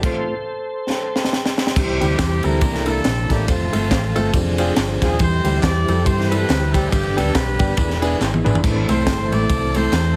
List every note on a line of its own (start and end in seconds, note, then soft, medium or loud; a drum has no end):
0.03 0.34 A3 soft
0.03 0.35 C4 soft
0.03 0.35 F4 medium
0.03 1.30 A4 medium
0.03 1.30 C5 medium
0.03 kick loud
0.03 crash medium
0.90 snare soft
1.16 snare medium
1.24 snare medium
1.33 snare medium
1.46 snare medium
1.58 snare medium
1.67 snare medium
1.76 1.97 C2 medium
1.76 2.40 C3 medium
1.76 1.83 D3 medium
1.76 2.62 G3 medium
1.76 2.62 C4 medium
1.76 2.61 G4 medium
1.76 kick loud
1.76 crash medium
1.76 tambourine medium
1.84 2.61 E3 medium
2.00 2.16 D2 medium
2.00 2.13 G3 medium
2.00 2.13 C4 medium
2.00 2.59 C4 medium
2.00 2.13 E4 medium
2.00 2.43 E4 medium
2.00 2.13 G4 medium
2.00 2.42 G4 loud
2.00 ride medium
2.00 tambourine medium
2.19 2.40 E2 medium
2.19 kick medium
2.19 snare loud
2.19 clap medium
2.19 ride medium
2.19 tambourine medium
2.43 2.59 D2 medium
2.43 2.56 G3 medium
2.43 2.56 C4 medium
2.43 2.87 D4 medium
2.43 2.56 E4 medium
2.43 2.87 E4 medium
2.43 2.56 A4 medium
2.43 2.87 A#4 loud
2.43 ride medium
2.43 tambourine medium
2.61 2.98 C2 loud
2.61 3.26 C3 medium
2.61 3.46 E3 medium
2.61 3.46 A#3 medium
2.61 3.47 D4 medium
2.61 3.46 A4 medium
2.61 kick loud
2.61 ride medium
2.61 tambourine medium
2.75 snare soft
2.86 2.99 A#3 medium
2.86 2.98 D4 medium
2.86 3.45 D4 medium
2.86 2.99 E4 medium
2.86 3.45 E4 medium
2.86 2.99 A4 medium
2.86 3.31 A4 loud
2.86 ride medium
2.86 tambourine medium
3.05 3.26 A#1 medium
3.05 snare loud
3.05 clap medium
3.05 ride medium
3.05 tambourine medium
3.29 3.45 A1 medium
3.29 3.42 A#3 medium
3.29 3.42 D4 medium
3.29 3.42 E4 medium
3.29 3.48 G4 medium
3.29 3.42 A4 medium
3.29 kick medium
3.29 snare soft
3.29 ride medium
3.29 tambourine medium
3.47 3.69 F1 loud
3.47 4.32 F3 medium
3.47 4.32 A3 medium
3.47 4.31 A3 medium
3.47 4.32 C4 medium
3.47 4.31 C4 medium
3.47 4.30 F4 medium
3.47 3.54 G4 medium
3.47 kick loud
3.47 ride medium
3.47 tambourine medium
3.52 4.35 A4 medium
3.72 3.88 G1 medium
3.72 3.85 A3 medium
3.72 3.85 C4 medium
3.72 3.85 F4 medium
3.72 3.85 A4 medium
3.72 ride medium
3.72 tambourine medium
3.91 4.12 A1 medium
3.91 kick medium
3.91 snare loud
3.91 clap medium
3.91 ride medium
3.91 tambourine medium
4.15 4.32 G1 loud
4.15 4.28 A3 medium
4.15 4.28 C4 medium
4.15 4.28 F4 medium
4.15 4.28 A4 loud
4.15 ride medium
4.15 tambourine medium
4.34 4.70 F1 loud
4.34 5.19 F3 medium
4.34 5.19 C4 medium
4.34 5.19 D4 medium
4.34 4.40 G4 medium
4.34 kick loud
4.34 ride medium
4.34 tambourine medium
4.41 5.22 G#4 medium
4.58 4.71 C4 loud
4.58 4.71 D4 medium
4.58 4.71 F4 medium
4.58 4.71 G#4 medium
4.58 ride medium
4.58 tambourine medium
4.76 4.98 G1 medium
4.76 snare loud
4.76 clap medium
4.76 ride medium
4.76 tambourine medium
5.02 5.17 D#1 medium
5.02 5.15 C4 medium
5.02 5.15 D4 medium
5.02 5.15 F4 medium
5.02 5.19 G#4 medium
5.02 5.15 G#4 medium
5.02 kick medium
5.02 snare soft
5.02 ride medium
5.02 tambourine medium
5.19 5.41 E2 loud
5.19 6.89 E3 medium
5.19 5.85 E3 medium
5.19 6.89 G3 medium
5.19 6.90 C4 medium
5.19 6.03 E4 medium
5.19 6.89 G4 medium
5.19 5.62 G4 medium
5.19 5.61 C5 loud
5.19 kick loud
5.19 ride medium
5.19 tambourine medium
5.44 5.60 D2 medium
5.44 5.57 G3 medium
5.44 5.57 C4 medium
5.44 5.57 E4 medium
5.44 5.57 G4 medium
5.44 ride medium
5.44 tambourine medium
5.61 5.85 E2 medium
5.61 6.06 G4 medium
5.61 6.02 D5 loud
5.61 kick medium
5.61 snare loud
5.61 clap medium
5.61 ride medium
5.61 tambourine medium
5.88 6.04 F2 loud
5.88 6.00 G3 medium
5.88 6.00 C4 medium
5.88 6.00 E4 medium
5.88 6.00 A4 medium
5.88 ride medium
5.88 tambourine medium
6.05 6.43 G2 loud
6.05 6.29 E4 medium
6.05 6.29 G4 medium
6.05 6.31 C5 loud
6.05 kick loud
6.05 ride medium
6.05 tambourine medium
6.21 snare soft
6.28 6.43 G3 medium
6.28 6.43 C4 medium
6.28 6.88 E4 medium
6.28 6.43 E4 medium
6.28 6.88 G4 medium
6.28 6.43 A4 medium
6.28 6.73 B4 loud
6.28 ride medium
6.28 tambourine medium
6.49 6.86 D2 medium
6.49 snare loud
6.49 clap medium
6.49 ride medium
6.49 tambourine medium
6.72 6.86 G3 medium
6.72 6.86 C4 medium
6.72 6.86 E4 medium
6.72 6.86 G4 medium
6.72 6.91 A4 medium
6.72 kick medium
6.72 snare soft
6.72 ride medium
6.72 tambourine medium
6.90 7.19 G1 medium
6.90 7.56 G2 medium
6.90 7.77 D3 medium
6.90 7.77 G3 medium
6.90 7.74 B3 medium
6.90 7.77 B3 medium
6.90 7.35 D4 medium
6.90 7.16 G4 medium
6.90 7.76 G4 medium
6.90 kick loud
6.90 ride medium
6.90 tambourine medium
7.16 7.33 D2 medium
7.16 7.29 G3 medium
7.16 7.29 B3 medium
7.16 7.29 D4 medium
7.16 7.29 G4 medium
7.16 7.35 A4 medium
7.16 ride medium
7.16 tambourine medium
7.34 7.56 B1 medium
7.34 8.00 D4 medium
7.34 8.00 G4 medium
7.34 8.03 B4 medium
7.34 kick medium
7.34 snare loud
7.34 clap medium
7.34 ride medium
7.34 tambourine medium
7.59 7.75 G1 loud
7.59 7.72 G3 medium
7.59 7.72 B3 medium
7.59 7.72 D4 medium
7.59 7.72 G4 medium
7.59 kick medium
7.59 ride medium
7.59 tambourine medium
7.77 8.14 E1 medium
7.77 8.42 E3 medium
7.77 8.63 E3 medium
7.77 8.21 B3 soft
7.77 8.21 D4 medium
7.77 8.21 G#4 medium
7.77 kick loud
7.77 ride medium
7.77 tambourine medium
7.90 snare soft
8.02 8.15 B3 medium
8.02 8.14 D4 medium
8.02 8.15 E4 medium
8.02 8.14 G#4 loud
8.02 ride medium
8.02 tambourine medium
8.21 8.42 G#1 medium
8.21 8.46 B3 medium
8.21 8.46 G#4 medium
8.21 snare medium
8.21 clap medium
8.21 tambourine loud
8.34 high tom medium
8.44 8.61 G#1 medium
8.44 8.57 B3 medium
8.44 8.57 D4 medium
8.44 8.87 D4 medium
8.44 8.57 E4 medium
8.44 8.57 G#4 medium
8.44 8.87 B4 medium
8.44 mid tom medium
8.44 tambourine medium
8.55 floor tom loud
8.63 8.85 A1 loud
8.63 9.28 A2 medium
8.63 10.16 E3 medium
8.63 10.16 A3 medium
8.63 10.16 C4 medium
8.63 8.70 G#4 medium
8.63 kick loud
8.63 crash medium
8.63 tambourine medium
8.69 10.16 A4 medium
8.89 9.04 C2 medium
8.89 9.01 A3 medium
8.89 9.01 C4 medium
8.89 9.01 E4 medium
8.89 9.72 E4 medium
8.89 9.01 A4 medium
8.89 9.32 A4 medium
8.89 9.29 C5 loud
8.89 ride medium
8.89 tambourine medium
9.07 9.28 G1 loud
9.07 kick medium
9.07 snare loud
9.07 clap medium
9.07 ride medium
9.07 tambourine medium
9.32 9.47 A1 loud
9.32 9.44 A3 medium
9.32 9.44 C4 medium
9.32 9.44 E4 medium
9.32 9.44 A4 medium
9.32 9.74 A4 medium
9.32 9.75 D5 loud
9.32 ride soft
9.32 tambourine medium
9.49 9.86 C2 loud
9.49 kick loud
9.49 ride medium
9.49 tambourine medium
9.74 9.87 A3 medium
9.74 9.88 C4 medium
9.74 10.16 E4 medium
9.74 9.88 E4 medium
9.74 10.16 A4 medium
9.74 9.88 A4 medium
9.74 10.16 C5 loud
9.74 ride medium
9.74 tambourine medium
9.92 10.16 E2 loud
9.92 snare medium
9.92 clap medium
9.92 ride medium
9.92 tambourine medium